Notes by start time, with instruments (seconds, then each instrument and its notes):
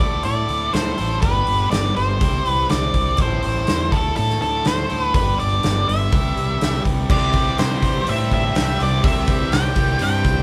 0.00 fingered electric bass D2, overdriven electric guitar D3 A3 E4 A4, lead electric guitar D5, kick
0.23 fingered electric bass A2, lead electric guitar D5, open hi-hat
0.49 fingered electric bass D2, open hi-hat
0.73 fingered electric bass D2, lead electric guitar C5, snare, open hi-hat
0.98 fingered electric bass A1, overdriven electric guitar D3 A3 E4 A4, open hi-hat
1.22 fingered electric bass G1, overdriven electric guitar G2 D3 G3 B3, lead electric guitar B4, kick, open hi-hat
1.26 overdriven electric guitar D4 G4
1.47 fingered electric bass G1, open hi-hat
1.71 fingered electric bass G1, lead electric guitar D5, snare, open hi-hat
1.96 fingered electric bass G1, lead electric guitar C5, open hi-hat
2.20 fingered electric bass C2, overdriven electric guitar C3 G3 C4 E4 G4, kick, open hi-hat
2.46 fingered electric bass C2, lead electric guitar B4, open hi-hat
2.70 fingered electric bass C2, lead electric guitar D5, snare, open hi-hat
2.94 fingered electric bass C2, kick, open hi-hat
3.17 fingered electric bass A1, overdriven electric guitar A2 E3 C4 E4, kick, open hi-hat
3.21 overdriven electric guitar A4, lead electric guitar C5
3.43 fingered electric bass A1, open hi-hat
3.67 fingered electric bass E2, snare, open hi-hat
3.91 fingered electric bass D2, overdriven electric guitar D3 A3 E4 A4, lead electric guitar A4, kick, open hi-hat
4.16 fingered electric bass A2, lead electric guitar A4, open hi-hat
4.30 snare
4.42 fingered electric bass D2, lead electric guitar A4, open hi-hat
4.65 fingered electric bass D2, lead electric guitar C5, snare, open hi-hat
4.89 fingered electric bass D2, overdriven electric guitar D3 A3 E4 A4, open hi-hat
5.04 lead electric guitar B4
5.14 fingered electric bass G1, overdriven electric guitar G2 D3 G3 B3 D4, lead electric guitar B4, kick, open hi-hat
5.18 overdriven electric guitar G4
5.40 fingered electric bass G1, lead electric guitar D5, open hi-hat
5.63 fingered electric bass G1, snare, open hi-hat
5.88 fingered electric bass G1, lead electric guitar E5, open hi-hat
6.12 fingered electric bass C2, overdriven electric guitar C3 E3 G3 E4, kick, open hi-hat
6.16 overdriven electric guitar G4
6.37 fingered electric bass C2, open hi-hat
6.61 fingered electric bass C2, snare, open hi-hat
6.85 fingered electric bass C2, kick, open hi-hat
7.10 fingered electric bass C2, overdriven electric guitar C3 E3 G3 C4 G4, lead electric guitar D5, kick, crash
7.33 overdriven electric guitar G3, kick, open hi-hat
7.58 overdriven electric guitar C3, fingered electric bass C3, lead electric guitar C5, snare, open hi-hat
7.82 overdriven electric guitar G3, kick, open hi-hat
8.07 fingered electric bass A2, overdriven electric guitar C4, lead electric guitar E5, open hi-hat
8.32 overdriven electric guitar C3, lead electric guitar E5, kick, open hi-hat
8.55 fingered electric bass C2, overdriven electric guitar G3, snare, open hi-hat
8.79 fingered electric bass C2, overdriven electric guitar C3 E3 G3 C4 G4, open hi-hat
8.83 lead electric guitar D5
9.03 fingered electric bass C2, overdriven electric guitar C3 E3 G3 C4 G4, lead electric guitar E5, kick, open hi-hat
9.27 overdriven electric guitar G3, kick, open hi-hat
9.52 fingered electric bass C2, overdriven electric guitar C3, lead electric guitar G5, snare, open hi-hat
9.76 fingered electric bass C2, overdriven electric guitar G3, kick, open hi-hat
9.99 fingered electric bass G2, overdriven electric guitar C4, open hi-hat
10.03 lead electric guitar G5
10.24 fingered electric bass C2, overdriven electric guitar C3, kick, open hi-hat